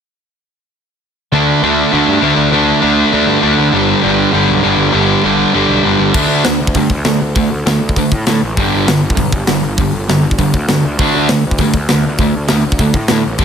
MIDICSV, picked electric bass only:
0, 0, Header, 1, 2, 480
1, 0, Start_track
1, 0, Tempo, 301508
1, 2108, Time_signature, 4, 2, 24, 8
1, 21406, End_track
2, 0, Start_track
2, 0, Title_t, "Picked electric bass"
2, 0, Program_c, 0, 34
2, 2105, Note_on_c, 0, 38, 85
2, 2418, Note_off_c, 0, 38, 0
2, 2590, Note_on_c, 0, 38, 85
2, 2901, Note_off_c, 0, 38, 0
2, 3070, Note_on_c, 0, 38, 84
2, 3225, Note_off_c, 0, 38, 0
2, 3310, Note_on_c, 0, 43, 86
2, 3464, Note_off_c, 0, 43, 0
2, 3541, Note_on_c, 0, 38, 88
2, 3698, Note_off_c, 0, 38, 0
2, 3778, Note_on_c, 0, 38, 86
2, 3935, Note_off_c, 0, 38, 0
2, 3994, Note_on_c, 0, 38, 87
2, 4316, Note_off_c, 0, 38, 0
2, 4510, Note_on_c, 0, 38, 78
2, 4820, Note_off_c, 0, 38, 0
2, 4998, Note_on_c, 0, 38, 85
2, 5149, Note_off_c, 0, 38, 0
2, 5209, Note_on_c, 0, 43, 93
2, 5369, Note_off_c, 0, 43, 0
2, 5458, Note_on_c, 0, 38, 81
2, 5615, Note_off_c, 0, 38, 0
2, 5710, Note_on_c, 0, 38, 88
2, 5863, Note_off_c, 0, 38, 0
2, 5941, Note_on_c, 0, 31, 85
2, 6254, Note_off_c, 0, 31, 0
2, 6442, Note_on_c, 0, 31, 84
2, 6748, Note_off_c, 0, 31, 0
2, 6919, Note_on_c, 0, 31, 84
2, 7070, Note_off_c, 0, 31, 0
2, 7143, Note_on_c, 0, 35, 79
2, 7299, Note_off_c, 0, 35, 0
2, 7408, Note_on_c, 0, 31, 88
2, 7556, Note_off_c, 0, 31, 0
2, 7608, Note_on_c, 0, 31, 88
2, 7769, Note_off_c, 0, 31, 0
2, 7869, Note_on_c, 0, 31, 87
2, 8181, Note_off_c, 0, 31, 0
2, 8340, Note_on_c, 0, 31, 80
2, 8656, Note_off_c, 0, 31, 0
2, 8837, Note_on_c, 0, 31, 82
2, 8990, Note_off_c, 0, 31, 0
2, 9055, Note_on_c, 0, 35, 84
2, 9216, Note_off_c, 0, 35, 0
2, 9315, Note_on_c, 0, 31, 73
2, 9469, Note_off_c, 0, 31, 0
2, 9548, Note_on_c, 0, 31, 93
2, 9705, Note_off_c, 0, 31, 0
2, 9798, Note_on_c, 0, 38, 84
2, 9994, Note_off_c, 0, 38, 0
2, 10001, Note_on_c, 0, 38, 79
2, 10212, Note_off_c, 0, 38, 0
2, 10261, Note_on_c, 0, 38, 87
2, 10465, Note_off_c, 0, 38, 0
2, 10527, Note_on_c, 0, 38, 82
2, 10721, Note_off_c, 0, 38, 0
2, 10753, Note_on_c, 0, 43, 92
2, 10952, Note_off_c, 0, 43, 0
2, 10985, Note_on_c, 0, 38, 80
2, 11189, Note_off_c, 0, 38, 0
2, 11227, Note_on_c, 0, 38, 88
2, 11430, Note_off_c, 0, 38, 0
2, 11491, Note_on_c, 0, 38, 89
2, 11685, Note_off_c, 0, 38, 0
2, 11716, Note_on_c, 0, 38, 80
2, 11916, Note_off_c, 0, 38, 0
2, 11952, Note_on_c, 0, 38, 77
2, 12154, Note_off_c, 0, 38, 0
2, 12187, Note_on_c, 0, 38, 88
2, 12392, Note_off_c, 0, 38, 0
2, 12419, Note_on_c, 0, 38, 91
2, 12627, Note_off_c, 0, 38, 0
2, 12691, Note_on_c, 0, 38, 81
2, 12887, Note_off_c, 0, 38, 0
2, 12926, Note_on_c, 0, 45, 81
2, 13124, Note_off_c, 0, 45, 0
2, 13169, Note_on_c, 0, 45, 82
2, 13366, Note_off_c, 0, 45, 0
2, 13414, Note_on_c, 0, 33, 89
2, 13610, Note_off_c, 0, 33, 0
2, 13647, Note_on_c, 0, 31, 92
2, 13846, Note_off_c, 0, 31, 0
2, 13909, Note_on_c, 0, 31, 92
2, 14100, Note_off_c, 0, 31, 0
2, 14135, Note_on_c, 0, 31, 93
2, 14332, Note_off_c, 0, 31, 0
2, 14381, Note_on_c, 0, 31, 87
2, 14576, Note_off_c, 0, 31, 0
2, 14598, Note_on_c, 0, 35, 92
2, 14803, Note_off_c, 0, 35, 0
2, 14853, Note_on_c, 0, 31, 81
2, 15052, Note_off_c, 0, 31, 0
2, 15085, Note_on_c, 0, 31, 84
2, 15288, Note_off_c, 0, 31, 0
2, 15313, Note_on_c, 0, 31, 101
2, 15521, Note_off_c, 0, 31, 0
2, 15575, Note_on_c, 0, 31, 96
2, 15774, Note_off_c, 0, 31, 0
2, 15807, Note_on_c, 0, 31, 78
2, 16009, Note_off_c, 0, 31, 0
2, 16057, Note_on_c, 0, 31, 88
2, 16255, Note_off_c, 0, 31, 0
2, 16273, Note_on_c, 0, 31, 83
2, 16482, Note_off_c, 0, 31, 0
2, 16540, Note_on_c, 0, 31, 79
2, 16738, Note_off_c, 0, 31, 0
2, 16784, Note_on_c, 0, 38, 78
2, 16980, Note_off_c, 0, 38, 0
2, 17011, Note_on_c, 0, 38, 76
2, 17213, Note_off_c, 0, 38, 0
2, 17268, Note_on_c, 0, 38, 98
2, 17462, Note_off_c, 0, 38, 0
2, 17498, Note_on_c, 0, 38, 86
2, 17696, Note_off_c, 0, 38, 0
2, 17759, Note_on_c, 0, 38, 83
2, 17949, Note_off_c, 0, 38, 0
2, 18010, Note_on_c, 0, 38, 79
2, 18195, Note_off_c, 0, 38, 0
2, 18256, Note_on_c, 0, 38, 84
2, 18439, Note_off_c, 0, 38, 0
2, 18460, Note_on_c, 0, 43, 86
2, 18657, Note_off_c, 0, 43, 0
2, 18680, Note_on_c, 0, 38, 87
2, 18886, Note_off_c, 0, 38, 0
2, 18994, Note_on_c, 0, 38, 84
2, 19169, Note_off_c, 0, 38, 0
2, 19221, Note_on_c, 0, 38, 92
2, 19400, Note_off_c, 0, 38, 0
2, 19415, Note_on_c, 0, 38, 86
2, 19613, Note_off_c, 0, 38, 0
2, 19679, Note_on_c, 0, 38, 81
2, 19867, Note_off_c, 0, 38, 0
2, 19917, Note_on_c, 0, 38, 93
2, 20105, Note_off_c, 0, 38, 0
2, 20162, Note_on_c, 0, 38, 80
2, 20348, Note_off_c, 0, 38, 0
2, 20372, Note_on_c, 0, 38, 85
2, 20570, Note_off_c, 0, 38, 0
2, 20593, Note_on_c, 0, 45, 90
2, 20798, Note_off_c, 0, 45, 0
2, 20866, Note_on_c, 0, 45, 93
2, 21056, Note_off_c, 0, 45, 0
2, 21116, Note_on_c, 0, 33, 90
2, 21301, Note_off_c, 0, 33, 0
2, 21316, Note_on_c, 0, 31, 98
2, 21406, Note_off_c, 0, 31, 0
2, 21406, End_track
0, 0, End_of_file